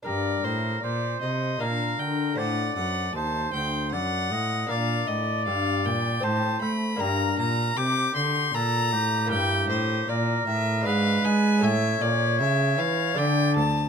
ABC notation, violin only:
X:1
M:3/4
L:1/8
Q:1/4=78
K:Gm
V:1 name="Violin"
d c d e f g | ^f f a g f2 | f e f g a =b | b b d' c' b2 |
[K:Aphr] g c d e ^e ^g | e d e f g a |]